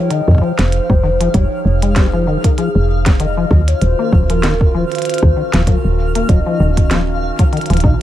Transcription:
Already playing: ambient pad F3 D#4 G#4 G5, soft synth lead C#5, synth texture F5
0.10 acid bass D#3, soft synth lead D#5, closed hi-hat
0.28 fm bass F2, kick
0.31 kick
0.35 kick
0.38 acid bass F3, soft synth lead C5, kick
0.59 fm bass F1, snare, closed hi-hat
0.72 closed hi-hat
0.90 fm bass F1, acid bass G3, kick
1.03 acid bass D#3
1.20 acid bass F3, closed hi-hat
1.34 fm bass F1, acid bass G3, soft synth lead C#5, kick, closed hi-hat
1.65 fm bass F1
1.82 acid bass G#3, closed hi-hat
1.90 soft synth lead C#5
1.96 acid bass G3, soft synth lead C5, kick, snare, closed hi-hat
2.13 acid bass F3
2.27 acid bass D#3
2.44 soft synth lead A#4, kick, closed hi-hat
2.58 acid bass F3, soft synth lead G#4, closed hi-hat
2.75 fm bass F1
3.06 acid bass G3, kick, snare, closed hi-hat
3.20 acid bass D#3, soft synth lead D#5, closed hi-hat
3.37 acid bass F3
3.51 fm bass D#2, ambient pad D#3 C#4 F4 F#4, acid bass F#3, kick
3.68 soft synth lead C#5, closed hi-hat
3.81 fm bass D#1, soft synth lead C5, closed hi-hat
3.99 acid bass A#3
4.12 fm bass D#1, acid bass F#3, kick
4.30 acid bass F3, soft synth lead A#4, closed hi-hat
4.43 acid bass D#3, snare, closed hi-hat
4.61 kick
4.74 acid bass F3, soft synth lead C5
4.92 closed hi-hat
4.95 closed hi-hat
4.98 closed hi-hat
5.02 closed hi-hat
5.05 closed hi-hat
5.10 closed hi-hat
5.14 closed hi-hat
5.18 closed hi-hat
5.23 fm bass D#2, acid bass F#3, kick
5.36 acid bass D#3
5.53 fm bass D#1, acid bass F3, snare, closed hi-hat
5.67 acid bass F#3, soft synth lead A#4, kick, closed hi-hat
5.85 fm bass D#1
5.98 ambient pad D#4
6.15 acid bass A#3, closed hi-hat
6.29 fm bass D#1, acid bass F#3, soft synth lead D#5, kick, closed hi-hat
6.46 acid bass F3
6.60 fm bass D#1, acid bass D#3
6.77 kick, closed hi-hat
6.91 acid bass F3, snare, closed hi-hat
7.39 acid bass F#3, kick, closed hi-hat
7.53 acid bass D#3, closed hi-hat
7.57 closed hi-hat
7.61 closed hi-hat
7.66 closed hi-hat
7.70 fm bass D#1, acid bass F3, closed hi-hat
7.73 closed hi-hat
7.77 closed hi-hat
7.80 fm bass A#1, acid bass D#4, kick, closed hi-hat

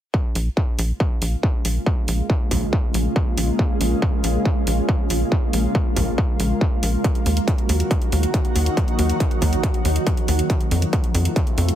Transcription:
0.14 ambient pad C#3 G#3 A#3 F4, kick
0.35 analog synth bass A#1, open hi-hat
0.57 kick
0.79 analog synth bass A#1, open hi-hat
1.00 kick
1.22 analog synth bass A#1, open hi-hat
1.43 kick
1.65 analog synth bass A#1, open hi-hat
1.86 kick
2.08 analog synth bass A#1, open hi-hat
2.30 kick
2.51 analog synth bass A#1, kick, open hi-hat
2.73 kick
2.94 analog synth bass A#1, open hi-hat
3.16 kick
3.37 analog synth bass A#1, open hi-hat
3.59 kick
3.81 analog synth bass A#1, open hi-hat
4.02 kick
4.24 analog synth bass A#1, open hi-hat
4.45 kick
4.67 analog synth bass A#1, open hi-hat
4.89 kick
5.10 analog synth bass A#1, open hi-hat
5.32 kick
5.53 analog synth bass A#1, open hi-hat
5.75 kick
5.96 analog synth bass A#1, kick, open hi-hat
6.18 kick
6.40 analog synth bass A#1, open hi-hat
6.61 kick
6.83 analog synth bass A#1, open hi-hat
7.04 ambient pad D#3 F#3 F#4, kick, closed hi-hat
7.15 closed hi-hat
7.26 analog synth bass D#2, open hi-hat
7.37 closed hi-hat
7.48 kick, closed hi-hat
7.58 closed hi-hat
7.69 analog synth bass D#2, open hi-hat
7.80 closed hi-hat
7.91 kick, closed hi-hat
8.02 closed hi-hat
8.12 analog synth bass D#2, open hi-hat
8.23 closed hi-hat
8.34 kick, closed hi-hat
8.45 closed hi-hat
8.55 analog synth bass D#2, open hi-hat
8.66 closed hi-hat
8.77 kick, closed hi-hat
8.88 closed hi-hat
8.99 analog synth bass D#2, open hi-hat
9.09 closed hi-hat
9.20 kick, closed hi-hat
9.31 closed hi-hat
9.42 analog synth bass D#2, kick, open hi-hat
9.53 closed hi-hat
9.63 kick, closed hi-hat
9.74 closed hi-hat
9.85 analog synth bass D#2, open hi-hat
9.96 closed hi-hat
10.07 kick, closed hi-hat
10.17 closed hi-hat
10.28 analog synth bass D#2, open hi-hat
10.39 closed hi-hat
10.50 ambient pad C3 F3 A3 F4, kick, closed hi-hat
10.61 closed hi-hat
10.71 analog synth bass F2, open hi-hat
10.82 closed hi-hat
10.93 kick, closed hi-hat
11.04 closed hi-hat
11.14 analog synth bass F2, open hi-hat
11.25 closed hi-hat
11.36 kick, closed hi-hat
11.47 closed hi-hat
11.58 analog synth bass F2, open hi-hat
11.68 closed hi-hat

